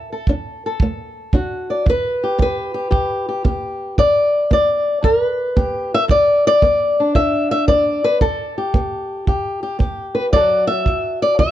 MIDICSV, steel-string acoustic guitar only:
0, 0, Header, 1, 2, 480
1, 0, Start_track
1, 0, Key_signature, 1, "major"
1, 0, Tempo, 529568
1, 1684, Time_signature, 4, 2, 24, 8
1, 10434, End_track
2, 0, Start_track
2, 0, Title_t, "Steel-string acoustic guitar"
2, 0, Program_c, 0, 25
2, 0, Note_on_c, 0, 50, 72
2, 0, Note_on_c, 0, 69, 54
2, 0, Note_on_c, 0, 76, 105
2, 103, Note_off_c, 0, 69, 0
2, 114, Note_on_c, 0, 69, 50
2, 224, Note_off_c, 0, 50, 0
2, 247, Note_off_c, 0, 76, 0
2, 265, Note_on_c, 0, 62, 72
2, 582, Note_off_c, 0, 69, 0
2, 599, Note_on_c, 0, 69, 50
2, 704, Note_off_c, 0, 62, 0
2, 747, Note_on_c, 0, 57, 73
2, 1185, Note_off_c, 0, 57, 0
2, 1211, Note_on_c, 0, 62, 66
2, 1218, Note_on_c, 0, 66, 50
2, 1541, Note_on_c, 0, 74, 54
2, 1657, Note_off_c, 0, 62, 0
2, 1671, Note_off_c, 0, 74, 0
2, 1673, Note_off_c, 0, 66, 0
2, 1680, Note_off_c, 0, 69, 0
2, 1683, Note_on_c, 0, 43, 73
2, 1717, Note_on_c, 0, 71, 99
2, 2024, Note_on_c, 0, 67, 45
2, 2133, Note_off_c, 0, 43, 0
2, 2159, Note_on_c, 0, 59, 68
2, 2181, Note_off_c, 0, 71, 0
2, 2193, Note_on_c, 0, 71, 86
2, 2481, Note_off_c, 0, 67, 0
2, 2485, Note_on_c, 0, 67, 51
2, 2611, Note_off_c, 0, 59, 0
2, 2630, Note_off_c, 0, 67, 0
2, 2634, Note_on_c, 0, 67, 53
2, 2638, Note_on_c, 0, 43, 65
2, 2974, Note_off_c, 0, 67, 0
2, 2978, Note_on_c, 0, 67, 45
2, 3091, Note_off_c, 0, 43, 0
2, 3122, Note_on_c, 0, 59, 61
2, 3125, Note_off_c, 0, 67, 0
2, 3129, Note_on_c, 0, 67, 45
2, 3573, Note_off_c, 0, 59, 0
2, 3610, Note_off_c, 0, 67, 0
2, 3610, Note_on_c, 0, 43, 77
2, 3614, Note_on_c, 0, 74, 108
2, 4057, Note_off_c, 0, 43, 0
2, 4084, Note_on_c, 0, 59, 72
2, 4090, Note_off_c, 0, 74, 0
2, 4101, Note_off_c, 0, 71, 0
2, 4105, Note_on_c, 0, 74, 89
2, 4535, Note_off_c, 0, 59, 0
2, 4555, Note_on_c, 0, 43, 66
2, 4570, Note_on_c, 0, 70, 94
2, 4733, Note_off_c, 0, 70, 0
2, 4733, Note_on_c, 0, 71, 94
2, 5010, Note_off_c, 0, 43, 0
2, 5041, Note_on_c, 0, 59, 60
2, 5042, Note_off_c, 0, 74, 0
2, 5045, Note_on_c, 0, 67, 48
2, 5385, Note_off_c, 0, 67, 0
2, 5389, Note_on_c, 0, 76, 115
2, 5395, Note_off_c, 0, 71, 0
2, 5395, Note_on_c, 0, 70, 94
2, 5477, Note_off_c, 0, 76, 0
2, 5494, Note_off_c, 0, 59, 0
2, 5504, Note_off_c, 0, 70, 0
2, 5504, Note_on_c, 0, 69, 94
2, 5514, Note_on_c, 0, 43, 78
2, 5536, Note_on_c, 0, 74, 105
2, 5855, Note_off_c, 0, 69, 0
2, 5855, Note_off_c, 0, 74, 0
2, 5866, Note_on_c, 0, 74, 118
2, 5970, Note_off_c, 0, 43, 0
2, 6005, Note_on_c, 0, 59, 72
2, 6344, Note_on_c, 0, 62, 51
2, 6455, Note_off_c, 0, 59, 0
2, 6481, Note_off_c, 0, 74, 0
2, 6482, Note_on_c, 0, 43, 70
2, 6485, Note_on_c, 0, 76, 114
2, 6798, Note_off_c, 0, 76, 0
2, 6809, Note_on_c, 0, 76, 106
2, 6934, Note_off_c, 0, 43, 0
2, 6955, Note_off_c, 0, 76, 0
2, 6959, Note_on_c, 0, 74, 107
2, 6964, Note_on_c, 0, 59, 64
2, 7287, Note_off_c, 0, 62, 0
2, 7290, Note_on_c, 0, 71, 101
2, 7415, Note_off_c, 0, 59, 0
2, 7440, Note_off_c, 0, 71, 0
2, 7440, Note_on_c, 0, 43, 69
2, 7444, Note_on_c, 0, 69, 90
2, 7769, Note_off_c, 0, 74, 0
2, 7774, Note_on_c, 0, 67, 47
2, 7893, Note_off_c, 0, 43, 0
2, 7920, Note_on_c, 0, 59, 72
2, 8372, Note_off_c, 0, 59, 0
2, 8400, Note_off_c, 0, 67, 0
2, 8406, Note_on_c, 0, 43, 69
2, 8410, Note_on_c, 0, 67, 51
2, 8715, Note_off_c, 0, 67, 0
2, 8726, Note_on_c, 0, 67, 47
2, 8855, Note_off_c, 0, 43, 0
2, 8871, Note_off_c, 0, 67, 0
2, 8871, Note_on_c, 0, 59, 58
2, 8882, Note_on_c, 0, 67, 45
2, 9193, Note_off_c, 0, 69, 0
2, 9197, Note_on_c, 0, 71, 88
2, 9293, Note_off_c, 0, 71, 0
2, 9327, Note_off_c, 0, 59, 0
2, 9356, Note_off_c, 0, 67, 0
2, 9360, Note_on_c, 0, 74, 104
2, 9372, Note_on_c, 0, 50, 78
2, 9377, Note_on_c, 0, 54, 50
2, 9383, Note_on_c, 0, 66, 48
2, 9389, Note_on_c, 0, 69, 49
2, 9671, Note_off_c, 0, 74, 0
2, 9674, Note_on_c, 0, 76, 112
2, 9818, Note_off_c, 0, 50, 0
2, 9845, Note_off_c, 0, 54, 0
2, 9856, Note_on_c, 0, 54, 69
2, 10162, Note_off_c, 0, 76, 0
2, 10173, Note_on_c, 0, 74, 91
2, 10299, Note_off_c, 0, 54, 0
2, 10320, Note_off_c, 0, 74, 0
2, 10323, Note_on_c, 0, 50, 68
2, 10323, Note_on_c, 0, 76, 108
2, 10434, Note_off_c, 0, 50, 0
2, 10434, Note_off_c, 0, 66, 0
2, 10434, Note_off_c, 0, 69, 0
2, 10434, Note_off_c, 0, 76, 0
2, 10434, End_track
0, 0, End_of_file